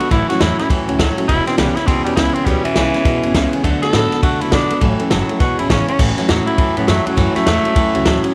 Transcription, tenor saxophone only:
0, 0, Header, 1, 2, 480
1, 0, Start_track
1, 0, Key_signature, 3, "major"
1, 0, Tempo, 294118
1, 183, Time_signature, 4, 2, 24, 8
1, 13612, End_track
2, 0, Start_track
2, 0, Title_t, "Tenor saxophone"
2, 0, Program_c, 0, 66
2, 190, Note_on_c, 0, 64, 101
2, 469, Note_off_c, 0, 64, 0
2, 479, Note_on_c, 0, 66, 103
2, 665, Note_on_c, 0, 64, 98
2, 690, Note_off_c, 0, 66, 0
2, 949, Note_off_c, 0, 64, 0
2, 959, Note_on_c, 0, 64, 104
2, 1134, Note_off_c, 0, 64, 0
2, 2086, Note_on_c, 0, 64, 120
2, 2387, Note_off_c, 0, 64, 0
2, 2394, Note_on_c, 0, 60, 93
2, 2566, Note_off_c, 0, 60, 0
2, 2575, Note_on_c, 0, 55, 99
2, 2873, Note_on_c, 0, 64, 100
2, 2897, Note_off_c, 0, 55, 0
2, 3045, Note_on_c, 0, 60, 97
2, 3070, Note_off_c, 0, 64, 0
2, 3330, Note_off_c, 0, 60, 0
2, 3340, Note_on_c, 0, 55, 95
2, 3512, Note_off_c, 0, 55, 0
2, 3521, Note_on_c, 0, 64, 114
2, 3817, Note_on_c, 0, 60, 100
2, 3842, Note_off_c, 0, 64, 0
2, 4004, Note_on_c, 0, 55, 101
2, 4029, Note_off_c, 0, 60, 0
2, 4301, Note_off_c, 0, 55, 0
2, 4311, Note_on_c, 0, 52, 127
2, 5715, Note_off_c, 0, 52, 0
2, 6235, Note_on_c, 0, 69, 120
2, 6879, Note_off_c, 0, 69, 0
2, 6904, Note_on_c, 0, 66, 96
2, 7192, Note_on_c, 0, 64, 86
2, 7217, Note_off_c, 0, 66, 0
2, 7371, Note_off_c, 0, 64, 0
2, 7390, Note_on_c, 0, 62, 108
2, 7853, Note_off_c, 0, 62, 0
2, 8823, Note_on_c, 0, 66, 92
2, 9117, Note_off_c, 0, 66, 0
2, 9126, Note_on_c, 0, 64, 85
2, 9299, Note_off_c, 0, 64, 0
2, 9310, Note_on_c, 0, 61, 93
2, 9595, Note_off_c, 0, 61, 0
2, 9604, Note_on_c, 0, 61, 96
2, 9778, Note_off_c, 0, 61, 0
2, 10551, Note_on_c, 0, 64, 95
2, 11024, Note_off_c, 0, 64, 0
2, 11052, Note_on_c, 0, 59, 84
2, 11219, Note_on_c, 0, 57, 95
2, 11244, Note_off_c, 0, 59, 0
2, 11527, Note_on_c, 0, 54, 88
2, 11551, Note_off_c, 0, 57, 0
2, 11992, Note_off_c, 0, 54, 0
2, 12007, Note_on_c, 0, 57, 116
2, 13402, Note_off_c, 0, 57, 0
2, 13612, End_track
0, 0, End_of_file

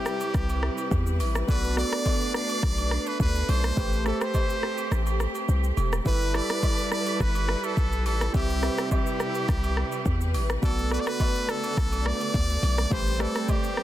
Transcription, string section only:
0, 0, Header, 1, 2, 480
1, 0, Start_track
1, 0, Tempo, 571429
1, 1249, Time_signature, 4, 2, 24, 8
1, 11617, End_track
2, 0, Start_track
2, 0, Title_t, "String section"
2, 0, Program_c, 0, 48
2, 0, Note_on_c, 0, 48, 82
2, 0, Note_on_c, 0, 55, 79
2, 0, Note_on_c, 0, 64, 76
2, 0, Note_on_c, 0, 71, 72
2, 1214, Note_off_c, 0, 55, 0
2, 1215, Note_off_c, 0, 64, 0
2, 1230, Note_off_c, 0, 48, 0
2, 1250, Note_on_c, 0, 57, 81
2, 1250, Note_on_c, 0, 62, 86
2, 3136, Note_off_c, 0, 71, 0
2, 3150, Note_off_c, 0, 62, 0
2, 3169, Note_on_c, 0, 60, 74
2, 3170, Note_on_c, 0, 67, 88
2, 5056, Note_off_c, 0, 57, 0
2, 5070, Note_off_c, 0, 60, 0
2, 5070, Note_off_c, 0, 67, 0
2, 5089, Note_on_c, 0, 71, 87
2, 5090, Note_on_c, 0, 55, 81
2, 5090, Note_on_c, 0, 64, 76
2, 5090, Note_on_c, 0, 69, 75
2, 6990, Note_off_c, 0, 64, 0
2, 6990, Note_off_c, 0, 69, 0
2, 6990, Note_off_c, 0, 71, 0
2, 7010, Note_on_c, 0, 48, 81
2, 7010, Note_on_c, 0, 64, 88
2, 7010, Note_on_c, 0, 71, 74
2, 8896, Note_off_c, 0, 55, 0
2, 8910, Note_off_c, 0, 48, 0
2, 8910, Note_off_c, 0, 64, 0
2, 8931, Note_on_c, 0, 50, 82
2, 8931, Note_on_c, 0, 57, 79
2, 10816, Note_off_c, 0, 71, 0
2, 10831, Note_off_c, 0, 50, 0
2, 10851, Note_on_c, 0, 55, 81
2, 10852, Note_on_c, 0, 60, 92
2, 11617, Note_off_c, 0, 55, 0
2, 11617, Note_off_c, 0, 57, 0
2, 11617, Note_off_c, 0, 60, 0
2, 11617, End_track
0, 0, End_of_file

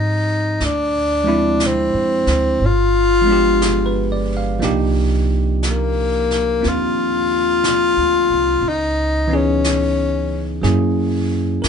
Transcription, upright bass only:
0, 0, Header, 1, 2, 480
1, 0, Start_track
1, 0, Key_signature, -3, "minor"
1, 0, Tempo, 1003344
1, 288, Time_signature, 4, 2, 24, 8
1, 5591, End_track
2, 0, Start_track
2, 0, Title_t, "Upright bass"
2, 0, Program_c, 0, 32
2, 0, Note_on_c, 0, 44, 77
2, 270, Note_off_c, 0, 44, 0
2, 287, Note_on_c, 0, 38, 74
2, 906, Note_off_c, 0, 38, 0
2, 926, Note_on_c, 0, 41, 53
2, 1075, Note_off_c, 0, 41, 0
2, 1084, Note_on_c, 0, 38, 58
2, 1234, Note_off_c, 0, 38, 0
2, 1242, Note_on_c, 0, 31, 69
2, 2193, Note_off_c, 0, 31, 0
2, 2210, Note_on_c, 0, 36, 72
2, 3158, Note_off_c, 0, 36, 0
2, 3178, Note_on_c, 0, 39, 64
2, 3798, Note_off_c, 0, 39, 0
2, 3812, Note_on_c, 0, 38, 54
2, 3963, Note_off_c, 0, 38, 0
2, 3971, Note_on_c, 0, 36, 54
2, 4119, Note_off_c, 0, 36, 0
2, 4122, Note_on_c, 0, 37, 74
2, 5065, Note_off_c, 0, 37, 0
2, 5087, Note_on_c, 0, 42, 73
2, 5546, Note_off_c, 0, 42, 0
2, 5568, Note_on_c, 0, 42, 64
2, 5591, Note_off_c, 0, 42, 0
2, 5591, End_track
0, 0, End_of_file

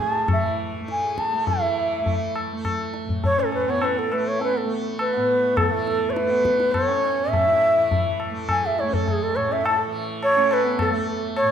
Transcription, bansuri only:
0, 0, Header, 1, 2, 480
1, 0, Start_track
1, 0, Tempo, 587659
1, 1210, Time_signature, 5, 2, 24, 8
1, 5040, Tempo, 577478
1, 9482, End_track
2, 0, Start_track
2, 0, Title_t, "Bansuri"
2, 0, Program_c, 0, 73
2, 19, Note_on_c, 0, 81, 92
2, 252, Note_off_c, 0, 81, 0
2, 268, Note_on_c, 0, 76, 77
2, 481, Note_off_c, 0, 76, 0
2, 747, Note_on_c, 0, 80, 87
2, 971, Note_on_c, 0, 81, 100
2, 983, Note_off_c, 0, 80, 0
2, 1205, Note_off_c, 0, 81, 0
2, 1210, Note_on_c, 0, 76, 93
2, 1900, Note_off_c, 0, 76, 0
2, 2656, Note_on_c, 0, 73, 109
2, 2774, Note_on_c, 0, 69, 93
2, 2786, Note_off_c, 0, 73, 0
2, 2888, Note_off_c, 0, 69, 0
2, 2893, Note_on_c, 0, 71, 89
2, 3020, Note_on_c, 0, 73, 102
2, 3033, Note_off_c, 0, 71, 0
2, 3137, Note_on_c, 0, 71, 98
2, 3149, Note_off_c, 0, 73, 0
2, 3254, Note_on_c, 0, 69, 83
2, 3266, Note_off_c, 0, 71, 0
2, 3370, Note_on_c, 0, 71, 89
2, 3382, Note_off_c, 0, 69, 0
2, 3494, Note_on_c, 0, 73, 91
2, 3506, Note_off_c, 0, 71, 0
2, 3612, Note_off_c, 0, 73, 0
2, 3621, Note_on_c, 0, 71, 97
2, 3734, Note_on_c, 0, 69, 76
2, 3746, Note_off_c, 0, 71, 0
2, 3852, Note_off_c, 0, 69, 0
2, 4088, Note_on_c, 0, 71, 93
2, 4549, Note_on_c, 0, 69, 88
2, 4561, Note_off_c, 0, 71, 0
2, 4980, Note_on_c, 0, 73, 74
2, 4993, Note_off_c, 0, 69, 0
2, 5004, Note_on_c, 0, 71, 95
2, 5016, Note_off_c, 0, 73, 0
2, 5497, Note_on_c, 0, 73, 108
2, 5510, Note_off_c, 0, 71, 0
2, 5978, Note_on_c, 0, 76, 122
2, 5991, Note_off_c, 0, 73, 0
2, 6715, Note_off_c, 0, 76, 0
2, 6979, Note_on_c, 0, 80, 95
2, 7109, Note_on_c, 0, 76, 86
2, 7121, Note_off_c, 0, 80, 0
2, 7223, Note_on_c, 0, 73, 85
2, 7236, Note_off_c, 0, 76, 0
2, 7339, Note_on_c, 0, 69, 90
2, 7351, Note_off_c, 0, 73, 0
2, 7460, Note_on_c, 0, 68, 94
2, 7472, Note_off_c, 0, 69, 0
2, 7582, Note_on_c, 0, 69, 103
2, 7595, Note_off_c, 0, 68, 0
2, 7689, Note_on_c, 0, 73, 89
2, 7701, Note_off_c, 0, 69, 0
2, 7827, Note_on_c, 0, 76, 99
2, 7840, Note_off_c, 0, 73, 0
2, 7939, Note_on_c, 0, 81, 95
2, 7951, Note_off_c, 0, 76, 0
2, 8053, Note_off_c, 0, 81, 0
2, 8415, Note_on_c, 0, 73, 123
2, 8663, Note_on_c, 0, 71, 105
2, 8675, Note_off_c, 0, 73, 0
2, 8893, Note_off_c, 0, 71, 0
2, 8897, Note_on_c, 0, 69, 89
2, 9112, Note_off_c, 0, 69, 0
2, 9359, Note_on_c, 0, 73, 112
2, 9482, Note_off_c, 0, 73, 0
2, 9482, End_track
0, 0, End_of_file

